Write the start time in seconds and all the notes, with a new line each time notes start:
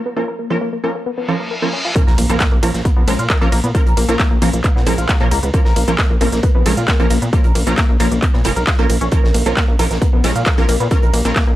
0.06 B3
0.16 F3 A#3 C#4 A#4
0.28 A#4
0.39 A#3
0.50 F3 A#3 C#4 A#4
0.61 A#3
0.73 A#3
0.84 F3 A#3 C#4 A#4
0.95 A#3
1.06 B3, reverse cymbal
1.18 B3
1.28 F3 C#4 F4 A#4
1.40 A#3
1.51 A#4
1.62 F3 A#3 C#4 A#4
1.73 C#4
1.85 F4
1.96 F3 A#3 C#4 A#4, kick, closed hi-hat, impact
2.07 A#1 A#4, snare
2.18 A#1 A#3, closed hi-hat, open hi-hat, ride
2.30 A#1 F3 A#3 C#4 A#4, closed hi-hat
2.40 A#3, kick, snare, clap, closed hi-hat
2.52 A#1 A#3
2.63 A#1 F3 A#3 C#4 A#4, closed hi-hat, open hi-hat, ride
2.74 A#1 A#3, snare, closed hi-hat
2.85 B3, kick, closed hi-hat
2.97 A#1 B3
3.08 A#1 F3 G#3 C#4 A#4, closed hi-hat, open hi-hat, ride
3.19 A#2 F4, closed hi-hat
3.30 A#3, kick, snare, clap, closed hi-hat
3.41 A#1 F3 A#3 C#4 A#4, closed hi-hat
3.52 A#1 A#3, snare, closed hi-hat, open hi-hat, ride
3.64 A#2 B3, closed hi-hat
3.75 F3 A#3 C#4 A#4, kick, closed hi-hat
3.86 A#1 A#4, closed hi-hat
3.97 A#1 A#3, closed hi-hat, open hi-hat, ride
4.09 A#1 F3 A#3 C#4 A#4, closed hi-hat
4.19 A#3, kick, snare, clap, closed hi-hat
4.31 A#1 A#3
4.42 A#1 F3 A#3 C#4 A#4, closed hi-hat, open hi-hat, ride
4.53 A#1 A#3, closed hi-hat
4.64 B3, kick, clap, closed hi-hat
4.76 A#2 B3, snare
4.86 A#1 F3 G#3 C#4 A#4, closed hi-hat, open hi-hat, ride
4.98 A#1 F4, closed hi-hat
5.08 A#3, kick, snare, clap, closed hi-hat
5.20 A#2 F3 A#3 C#4 A#4, closed hi-hat
5.31 C#2 A#3, closed hi-hat, open hi-hat, ride
5.43 C#2 B3, closed hi-hat
5.54 F3 A#3 C#4 A#4, kick, closed hi-hat
5.65 A#1 A#4, snare
5.76 A#1 A#3, closed hi-hat, open hi-hat, ride
5.88 A#1 F3 A#3 C#4 A#4, closed hi-hat
5.98 A#3, kick, snare, clap, closed hi-hat
6.10 A#1 A#3
6.21 A#1 F3 A#3 C#4 A#4, closed hi-hat, open hi-hat, ride
6.32 A#1 A#3, snare, closed hi-hat
6.43 B3, kick, closed hi-hat
6.55 A#1 B3
6.66 A#1 F3 G#3 C#4 A#4, closed hi-hat, open hi-hat, ride
6.77 A#2 F4, closed hi-hat
6.88 A#3, kick, snare, clap, closed hi-hat
7.00 A#1 F3 A#3 C#4 A#4, closed hi-hat
7.10 A#1 A#3, snare, closed hi-hat, open hi-hat, ride
7.22 A#2 B3, closed hi-hat
7.33 F3 A#3 C#4 A#4, kick, closed hi-hat
7.44 A#1 A#4, closed hi-hat
7.55 A#1 A#3, closed hi-hat, open hi-hat, ride
7.67 A#1 F3 A#3 C#4 A#4, closed hi-hat
7.77 A#3, kick, snare, clap, closed hi-hat
7.89 A#1 A#3
8.00 A#1 F3 A#3 C#4 A#4, closed hi-hat, open hi-hat, ride
8.11 A#1 A#3, closed hi-hat
8.22 B3, kick, clap, closed hi-hat
8.33 A#2 B3, snare
8.44 F1 F3 B3 C#4 A#4, closed hi-hat, open hi-hat, ride
8.56 B1 A#4, closed hi-hat
8.67 F4, kick, snare, clap, closed hi-hat
8.79 A#1 F3 A#3 C#4 A#4, closed hi-hat
8.89 A#1 A#3, closed hi-hat, open hi-hat, ride
9.01 A#1 C#4, closed hi-hat
9.12 F3 A#3 C#4 A#4, kick, closed hi-hat
9.24 A#1 A#4, snare
9.34 A#1 A#3, closed hi-hat, open hi-hat, ride
9.46 A#1 F3 A#3 C#4 A#4, closed hi-hat
9.57 A#3, kick, snare, clap, closed hi-hat
9.68 A#1 A#3
9.79 A#1 F3 A#3 C#4 A#4, closed hi-hat, open hi-hat, ride
9.91 A#1 A#3, snare, closed hi-hat
10.02 B3, kick, closed hi-hat
10.13 A#1 B3
10.24 A#1 F3 G#3 C#4 A#4, closed hi-hat, open hi-hat, ride
10.36 A#2 F4, closed hi-hat
10.46 A#3, kick, snare, clap, closed hi-hat
10.58 A#1 F3 A#3 C#4 A#4, closed hi-hat
10.68 A#1 A#3, snare, closed hi-hat, open hi-hat, ride
10.80 A#2 B3, closed hi-hat
10.91 F3 A#3 C#4 A#4, kick, closed hi-hat
11.03 A#1 A#4, closed hi-hat
11.13 A#1 A#3, closed hi-hat, open hi-hat, ride
11.25 A#1 F3 A#3 C#4 A#4, closed hi-hat
11.36 A#3, kick, snare, clap, closed hi-hat
11.47 A#1 A#3